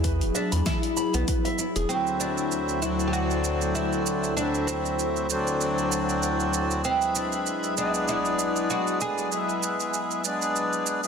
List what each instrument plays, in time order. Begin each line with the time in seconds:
Already playing: sub bass E2, ambient pad F#3 E4 G#4, oud E4
0.04 nylon-string guitar B4, kick, open hi-hat, shaker
0.21 sub bass E1, open hi-hat, shaker
0.35 oud D4, nylon-string guitar E5, shaker
0.52 sub bass E2, nylon-string guitar B5, open hi-hat, shaker
0.66 oud E4, kick, snare, open hi-hat, shaker
0.83 open hi-hat, shaker
0.97 nylon-string guitar B5, shaker
1.14 sub bass B1, nylon-string guitar B3, open hi-hat, shaker
1.28 nylon-string guitar B4, kick, open hi-hat, shaker
1.45 nylon-string guitar E5, open hi-hat, shaker
1.59 nylon-string guitar E4, shaker
1.76 sub bass E1, nylon-string guitar G#4, open hi-hat, shaker
1.88 harmonium D2 F#3 C4 E4, ambient pad D2, oud C4, shaker
2.07 shaker
2.20 oud D4, shaker
2.38 shaker
2.50 ambient pad A4, shaker
2.69 shaker
2.81 harmonium D2 F#3 C4 D4, oud E4, shaker
3.00 shaker
3.08 oud G4
3.13 oud F#4, shaker
3.31 shaker
3.44 shaker
3.62 shaker
3.75 oud E4, shaker
3.93 shaker
4.06 shaker
4.24 shaker
4.35 harmonium D2 F#3 C4 E4, oud D4, shaker
4.55 shaker
4.67 oud C4, shaker
4.86 shaker
4.99 shaker
5.17 shaker
5.28 harmonium D2 F#3 C4 D4, shaker
5.47 shaker
5.61 shaker
5.78 shaker
5.92 shaker
6.09 shaker
6.23 shaker
6.40 shaker
6.54 shaker
6.71 shaker
6.83 harmonium G#3 E4 B4, oud C4, shaker
7.02 shaker
7.15 oud D4, shaker
7.33 shaker
7.46 shaker
7.64 shaker
7.75 harmonium G#3 B3, oud E4, shaker
7.80 harmonium D4
7.94 shaker
8.08 oud E4, shaker
8.25 shaker
8.39 shaker
8.56 shaker
8.70 oud F#4, shaker
8.87 shaker
9.01 oud G#4, shaker
9.08 ambient pad G#5
9.18 shaker
9.30 harmonium G#3 B3, shaker
9.34 harmonium E4
9.49 shaker
9.63 shaker
9.80 shaker
9.94 shaker
10.11 shaker
10.23 harmonium G#3 B3, shaker
10.27 harmonium D4
10.42 shaker
10.56 shaker
10.73 shaker
10.87 shaker
11.03 harmonium G#3 B3, shaker